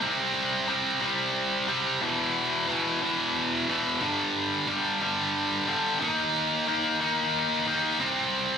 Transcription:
0.01 0.66 C3 loud
0.01 0.68 G3 medium
0.01 0.68 C4 medium
0.67 0.99 C3 medium
0.67 1.01 G3 medium
0.67 1.01 C4 medium
1.01 1.66 C3 loud
1.01 1.68 G3 loud
1.01 1.68 C4 loud
1.68 1.99 C3 medium
1.68 2.02 G3 medium
1.68 2.00 C4 medium
2.01 2.67 E2 loud
2.01 2.68 B2 medium
2.01 2.68 E3 loud
2.68 3.00 E2 medium
2.68 3.01 B2 medium
2.68 3.01 E3 medium
3.01 3.67 E2 loud
3.01 3.68 B2 loud
3.01 3.68 E3 loud
3.68 3.99 E2 medium
3.68 3.99 B2 medium
3.68 4.00 E3 medium
4.01 4.66 G2 loud
4.01 4.67 D3 loud
4.01 4.68 G3 loud
4.67 5.00 G2 medium
4.67 5.01 D3 medium
4.67 5.02 G3 medium
5.01 5.66 G2 medium
5.01 5.67 D3 loud
5.01 5.68 G3 loud
5.67 5.98 G2 medium
5.67 5.99 D3 medium
5.67 6.01 G3 medium
6.00 6.65 D#3 medium
6.00 6.66 A#3 loud
6.00 6.68 D#4 loud
6.67 6.99 D#3 medium
6.67 6.99 A#3 medium
6.67 7.00 D#4 medium
7.00 7.65 D#3 medium
7.00 7.66 A#3 medium
7.00 7.66 D#4 loud
7.66 7.98 D#3 medium
7.66 7.98 A#3 medium
7.66 7.98 D#4 medium
8.00 8.58 C3 medium
8.00 8.58 G3 loud
8.00 8.58 C4 loud

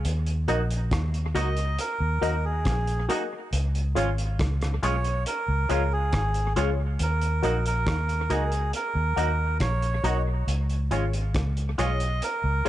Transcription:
0.05 0.46 D#2 loud
0.05 closed hi-hat medium
0.26 closed hi-hat soft
0.48 0.90 A#1 medium
0.48 0.60 A#3 medium
0.48 0.61 D#4 medium
0.48 0.69 F#4 medium
0.48 0.61 F#4 medium
0.48 0.70 A#4 medium
0.48 0.70 D#5 loud
0.48 closed hi-hat medium
0.71 closed hi-hat medium
0.91 1.33 D#2 medium
0.91 kick loud
0.91 cross-stick loud
0.91 closed hi-hat medium
1.14 closed hi-hat soft
1.35 1.76 C#2 medium
1.35 1.47 A#3 medium
1.35 1.48 D#4 loud
1.35 1.56 F#4 loud
1.35 1.48 F#4 loud
1.35 1.56 A#4 medium
1.35 1.80 D#5 loud
1.35 1.57 D#5 loud
1.35 closed hi-hat medium
1.57 closed hi-hat medium
1.79 2.22 A#4 medium
1.79 closed hi-hat medium
2.00 2.21 D#2 medium
2.21 2.63 D#2 medium
2.21 2.34 A#3 medium
2.21 2.34 D#4 medium
2.21 2.43 F#4 medium
2.21 2.35 F#4 medium
2.21 2.43 A#4 medium
2.21 2.45 A#4 medium
2.21 2.44 D#5 loud
2.21 closed hi-hat medium
2.45 3.06 G#4 medium
2.65 3.07 A#1 medium
2.65 kick medium
2.65 cross-stick medium
2.65 closed hi-hat medium
2.87 closed hi-hat soft
3.09 3.21 A#3 medium
3.09 3.22 D#4 medium
3.09 3.30 F#4 medium
3.09 3.22 F#4 loud
3.09 3.30 A#4 medium
3.09 3.31 D#5 medium
3.09 closed hi-hat medium
3.53 3.94 C#2 loud
3.53 closed hi-hat medium
3.75 closed hi-hat soft
3.95 4.37 G#1 medium
3.95 4.08 G#3 medium
3.95 4.08 C#4 medium
3.95 4.17 F4 medium
3.95 4.09 F4 loud
3.95 4.17 G#4 medium
3.95 4.17 C#5 medium
3.95 closed hi-hat medium
4.18 closed hi-hat medium
4.39 4.81 C#2 medium
4.39 kick loud
4.39 cross-stick loud
4.39 closed hi-hat medium
4.62 cross-stick medium
4.62 closed hi-hat soft
4.83 5.24 B1 medium
4.83 4.95 G#3 medium
4.83 4.95 C#4 medium
4.83 5.04 F4 loud
4.83 4.96 F4 medium
4.83 5.04 G#4 medium
4.83 5.04 C#5 loud
4.83 5.24 C#5 loud
4.83 closed hi-hat medium
5.04 closed hi-hat soft
5.26 5.69 A#4 medium
5.26 closed hi-hat medium
5.48 5.69 C#2 medium
5.69 6.11 C#2 medium
5.69 5.82 G#3 medium
5.69 5.82 C#4 medium
5.69 5.91 F4 medium
5.69 5.82 F4 medium
5.69 5.91 G#4 medium
5.69 5.93 A#4 medium
5.69 5.91 C#5 medium
5.69 closed hi-hat medium
5.92 6.53 G#4 medium
6.13 6.54 G#1 medium
6.13 kick loud
6.13 cross-stick loud
6.13 closed hi-hat medium
6.34 closed hi-hat soft
6.56 6.98 C#2 medium
6.56 6.69 G#3 medium
6.56 6.69 C#4 loud
6.56 6.78 F4 loud
6.56 6.69 F4 loud
6.56 6.78 G#4 medium
6.56 6.78 C#5 loud
6.56 closed hi-hat medium
6.99 7.41 D#2 loud
6.99 7.65 A#4 medium
6.99 closed hi-hat medium
7.22 closed hi-hat soft
7.43 7.85 A#1 medium
7.43 7.56 A#3 medium
7.43 7.56 D#4 medium
7.43 7.64 F#4 medium
7.43 7.56 F#4 medium
7.43 7.65 A#4 medium
7.43 7.65 D#5 medium
7.43 closed hi-hat medium
7.66 8.33 A#4 loud
7.66 closed hi-hat medium
7.87 8.28 D#2 medium
7.87 kick loud
7.87 cross-stick loud
7.87 closed hi-hat medium
8.09 closed hi-hat soft
8.30 8.71 C#2 medium
8.30 8.42 A#3 medium
8.30 8.43 D#4 medium
8.30 8.51 F#4 loud
8.30 8.43 F#4 medium
8.30 8.72 G#4 medium
8.30 8.52 A#4 medium
8.30 8.52 D#5 loud
8.30 closed hi-hat medium
8.52 closed hi-hat medium
8.73 9.58 A#4 medium
8.73 closed hi-hat medium
8.95 9.16 D#2 medium
9.16 9.58 D#2 medium
9.16 9.29 A#3 medium
9.16 9.30 D#4 medium
9.16 9.38 F#4 medium
9.16 9.30 F#4 medium
9.16 9.38 A#4 medium
9.16 9.39 D#5 loud
9.16 closed hi-hat medium
9.60 10.02 A#1 medium
9.60 10.22 C#5 loud
9.60 kick loud
9.60 cross-stick medium
9.60 closed hi-hat medium
9.82 closed hi-hat soft
10.04 10.45 B1 medium
10.04 10.16 A#3 medium
10.04 10.17 D#4 medium
10.04 10.25 F#4 loud
10.04 10.17 F#4 loud
10.04 10.26 A#4 medium
10.04 10.26 D#5 loud
10.04 closed hi-hat medium
10.47 10.89 C#2 loud
10.47 closed hi-hat medium
10.70 closed hi-hat soft
10.91 11.32 G#1 medium
10.91 11.03 G#3 medium
10.91 11.04 C#4 medium
10.91 11.12 F4 medium
10.91 11.04 F4 medium
10.91 11.13 G#4 medium
10.91 11.13 C#5 loud
10.91 closed hi-hat medium
11.13 closed hi-hat medium
11.34 11.76 C#2 medium
11.34 kick loud
11.34 cross-stick loud
11.34 closed hi-hat medium
11.57 closed hi-hat soft
11.78 12.20 B1 medium
11.78 11.90 G#3 medium
11.78 11.91 C#4 medium
11.78 12.00 F4 loud
11.78 11.91 F4 medium
11.78 12.00 G#4 medium
11.78 12.00 C#5 loud
11.78 12.24 D#5 loud
11.78 closed hi-hat medium
12.00 closed hi-hat medium
12.22 12.69 A#4 medium
12.22 closed hi-hat medium
12.44 12.64 C#2 medium
12.65 12.69 G#3 medium
12.65 12.69 F4 medium
12.65 12.69 G#4 medium
12.65 closed hi-hat medium

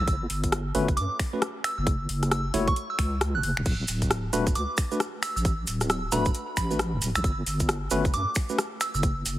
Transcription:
0.07 0.27 G1 loud
0.07 0.16 E6 medium
0.07 kick loud
0.07 closed hi-hat medium
0.30 0.72 G1 medium
0.30 open hi-hat loud
0.44 kick medium
0.44 closed hi-hat medium
0.52 cross-stick loud
0.52 closed hi-hat medium
0.75 0.99 G1 medium
0.75 0.87 A3 loud
0.75 0.87 C#4 medium
0.75 0.87 F#4 medium
0.75 0.87 B4 loud
0.75 open hi-hat loud
0.88 kick loud
0.88 closed hi-hat soft
0.97 1.08 G2 medium
0.97 1.11 D6 medium
0.97 closed hi-hat medium
1.19 finger snap medium
1.19 kick loud
1.19 open hi-hat loud
1.33 1.41 A3 medium
1.33 1.41 C#4 medium
1.33 1.41 F#4 medium
1.33 1.41 B4 medium
1.42 cross-stick loud
1.42 closed hi-hat medium
1.64 1.73 E6 medium
1.64 finger snap medium
1.64 open hi-hat loud
1.78 2.06 F#1 loud
1.78 1.84 E6 medium
1.87 kick loud
1.87 closed hi-hat medium
2.09 2.51 F#1 medium
2.09 open hi-hat loud
2.23 cross-stick medium
2.23 closed hi-hat medium
2.31 2.46 E6 medium
2.31 cross-stick loud
2.31 closed hi-hat medium
2.54 2.73 F#1 medium
2.54 2.66 A3 loud
2.54 2.66 E4 medium
2.54 2.66 F#4 medium
2.54 2.66 C#5 loud
2.54 open hi-hat loud
2.68 2.78 C#6 loud
2.68 kick loud
2.68 closed hi-hat soft
2.76 closed hi-hat medium
2.90 2.96 E6 medium
2.99 3.36 C#2 medium
2.99 finger snap medium
2.99 kick medium
2.99 open hi-hat loud
3.21 cross-stick loud
3.21 closed hi-hat medium
3.35 3.42 F#1 loud
3.35 3.40 F#6 medium
3.43 3.55 F#1 medium
3.43 3.52 F#6 medium
3.43 open hi-hat loud
3.57 3.64 E1 medium
3.57 finger snap medium
3.65 3.85 D1 loud
3.65 kick loud
3.65 closed hi-hat medium
3.65 crash medium
3.65 maracas soft
3.88 4.30 D1 medium
3.88 open hi-hat loud
3.88 maracas loud
4.02 kick medium
4.02 closed hi-hat medium
4.02 maracas soft
4.11 cross-stick loud
4.11 closed hi-hat medium
4.11 maracas soft
4.33 4.57 D1 medium
4.33 4.45 A3 loud
4.33 4.45 D4 medium
4.33 4.45 F#4 medium
4.33 4.45 B4 loud
4.33 open hi-hat loud
4.33 maracas medium
4.47 kick loud
4.47 closed hi-hat soft
4.47 maracas medium
4.55 4.66 D2 medium
4.55 4.70 D6 medium
4.55 closed hi-hat medium
4.55 maracas soft
4.77 finger snap medium
4.77 kick loud
4.77 open hi-hat loud
4.77 maracas medium
4.92 4.99 A3 medium
4.92 4.99 D4 medium
4.92 4.99 F#4 medium
4.92 4.99 B4 medium
4.92 maracas medium
5.00 cross-stick loud
5.00 closed hi-hat medium
5.00 maracas soft
5.23 5.31 E6 medium
5.23 finger snap medium
5.23 open hi-hat loud
5.23 maracas medium
5.36 5.65 A1 loud
5.36 5.42 E6 medium
5.36 maracas medium
5.45 kick loud
5.45 closed hi-hat medium
5.45 maracas soft
5.67 6.09 D1 medium
5.67 open hi-hat loud
5.67 maracas loud
5.81 cross-stick medium
5.81 closed hi-hat medium
5.81 maracas medium
5.90 6.04 E6 medium
5.90 cross-stick loud
5.90 closed hi-hat medium
5.90 maracas soft
6.12 6.31 D1 loud
6.12 6.24 A3 loud
6.12 6.24 D4 medium
6.12 6.24 F#4 medium
6.12 6.24 B4 loud
6.12 6.27 B5 medium
6.12 open hi-hat loud
6.12 maracas loud
6.25 kick loud
6.25 closed hi-hat soft
6.25 maracas medium
6.35 closed hi-hat medium
6.35 maracas soft
6.57 6.95 A1 medium
6.57 6.71 B5 medium
6.57 finger snap medium
6.57 kick medium
6.57 open hi-hat loud
6.57 maracas loud
6.71 6.78 A3 medium
6.71 6.78 D4 medium
6.71 6.78 F#4 medium
6.71 6.78 B4 medium
6.71 maracas medium
6.79 cross-stick loud
6.79 closed hi-hat medium
6.79 maracas soft
6.93 7.00 D1 loud
7.02 7.13 D1 medium
7.02 open hi-hat loud
7.02 maracas loud
7.15 7.22 B1 medium
7.15 7.21 E6 medium
7.15 finger snap medium
7.15 maracas medium
7.24 7.43 G1 loud
7.24 7.33 E6 medium
7.24 kick loud
7.24 closed hi-hat medium
7.24 maracas soft
7.46 7.89 G1 medium
7.46 open hi-hat loud
7.46 maracas medium
7.60 kick medium
7.60 closed hi-hat medium
7.60 maracas medium
7.69 cross-stick loud
7.69 closed hi-hat medium
7.69 maracas soft
7.91 8.15 G1 medium
7.91 8.03 A3 loud
7.91 8.03 C#4 medium
7.91 8.03 F#4 medium
7.91 8.03 B4 loud
7.91 open hi-hat loud
7.91 maracas loud
8.05 kick loud
8.05 closed hi-hat soft
8.05 maracas medium
8.14 8.25 G2 medium
8.14 8.28 D6 medium
8.14 closed hi-hat medium
8.14 maracas soft
8.35 finger snap medium
8.35 kick loud
8.35 open hi-hat loud
8.35 maracas loud
8.49 8.57 A3 medium
8.49 8.57 C#4 medium
8.49 8.57 F#4 medium
8.49 8.57 B4 medium
8.49 maracas medium
8.58 cross-stick loud
8.58 closed hi-hat medium
8.58 maracas soft
8.81 8.90 E6 medium
8.81 finger snap medium
8.81 open hi-hat loud
8.81 maracas loud
8.95 9.23 F#1 loud
8.95 9.00 E6 medium
8.95 maracas medium
9.03 kick loud
9.03 closed hi-hat medium
9.03 maracas soft
9.26 9.39 F#1 medium
9.26 open hi-hat loud
9.26 maracas medium

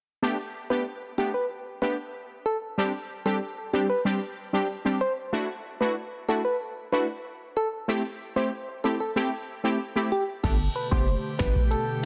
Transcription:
0.22 0.37 A3 medium
0.22 0.37 B3 medium
0.22 0.37 D4 medium
0.22 0.37 G4 loud
0.70 0.85 A3 medium
0.70 0.85 B3 medium
0.70 0.85 D4 medium
0.70 0.85 G4 medium
0.70 0.82 B4 medium
1.18 1.32 A3 medium
1.18 1.32 B3 medium
1.18 1.33 D4 medium
1.18 1.30 G4 medium
1.18 1.33 G4 medium
1.34 1.46 B4 medium
1.82 1.96 A3 medium
1.82 1.96 B3 medium
1.82 1.96 D4 medium
1.82 1.97 G4 medium
1.82 1.94 B4 medium
2.46 2.57 A4 medium
2.78 2.92 G3 medium
2.78 2.92 C4 medium
2.78 2.92 D4 medium
2.78 2.92 G4 loud
3.25 3.40 G3 medium
3.25 3.40 C4 medium
3.25 3.40 D4 medium
3.25 3.40 G4 medium
3.25 3.37 A4 medium
3.73 3.88 G3 medium
3.73 3.88 C4 medium
3.73 3.88 D4 medium
3.73 3.85 G4 medium
3.73 3.88 G4 medium
3.90 4.01 B4 medium
4.05 4.20 G3 medium
4.05 4.20 C4 medium
4.05 4.20 D4 medium
4.05 4.20 G4 loud
4.53 4.67 G3 medium
4.53 4.68 C4 medium
4.53 4.68 D4 medium
4.53 4.68 G4 medium
4.85 4.99 G3 medium
4.85 4.99 C4 medium
4.85 5.00 D4 medium
4.85 5.00 G4 medium
5.01 5.13 C5 medium
5.33 5.47 A3 medium
5.33 5.47 D4 medium
5.33 5.47 E4 medium
5.33 5.47 F#4 loud
5.81 5.95 A3 medium
5.81 5.95 D4 medium
5.81 5.95 E4 medium
5.81 5.95 F#4 medium
5.81 5.92 B4 medium
6.28 6.43 A3 medium
6.28 6.43 D4 medium
6.28 6.43 E4 medium
6.28 6.43 F#4 medium
6.28 6.40 A4 medium
6.45 6.56 B4 medium
6.92 7.07 A3 medium
6.92 7.07 D4 medium
6.92 7.07 E4 medium
6.92 7.07 F#4 medium
6.92 7.04 B4 medium
7.57 7.68 A4 medium
7.88 8.03 A3 medium
7.88 8.03 C4 medium
7.88 8.03 E4 medium
7.88 8.03 G4 loud
8.36 8.50 A3 medium
8.36 8.51 C4 medium
8.36 8.51 E4 medium
8.36 8.51 G4 medium
8.36 8.48 C5 medium
8.84 8.98 A3 medium
8.84 8.99 C4 medium
8.84 8.99 E4 medium
8.84 8.99 G4 medium
8.84 8.96 A4 medium
9.00 9.12 A4 medium
9.16 9.30 A3 medium
9.16 9.30 C4 medium
9.16 9.30 E4 medium
9.16 9.31 G4 loud
9.64 9.78 A3 medium
9.64 9.78 C4 medium
9.64 9.78 E4 medium
9.64 9.78 G4 medium
9.96 10.10 A3 medium
9.96 10.10 C4 medium
9.96 10.10 E4 medium
9.96 10.10 G4 medium
10.12 10.24 G4 medium
10.43 10.68 G1 loud
10.43 12.05 B2 medium
10.43 12.05 D3 medium
10.43 10.58 A3 loud
10.43 12.05 A3 medium
10.43 10.58 B3 medium
10.43 10.58 D4 medium
10.43 12.05 G4 medium
10.43 10.58 G4 loud
10.43 10.55 A4 loud
10.43 kick loud
10.43 closed hi-hat medium
10.43 crash loud
10.43 shaker medium
10.60 shaker soft
10.76 10.87 B4 medium
10.76 closed hi-hat medium
10.91 11.16 F#1 medium
10.91 11.06 A3 medium
10.91 11.06 B3 medium
10.91 11.06 D4 medium
10.91 11.06 G4 medium
10.91 11.15 C5 medium
10.91 kick medium
10.91 shaker medium
11.08 closed hi-hat medium
11.08 shaker medium
11.24 shaker medium
11.39 11.52 G1 loud
11.39 11.54 A3 medium
11.39 11.54 B3 medium
11.39 11.54 D4 medium
11.39 11.54 G4 medium
11.39 11.63 B4 medium
11.39 finger snap medium
11.39 kick medium
11.39 snare loud
11.39 closed hi-hat medium
11.56 kick medium
11.56 shaker medium
11.71 12.05 A4 loud
11.71 closed hi-hat medium
11.71 shaker medium
11.87 shaker soft

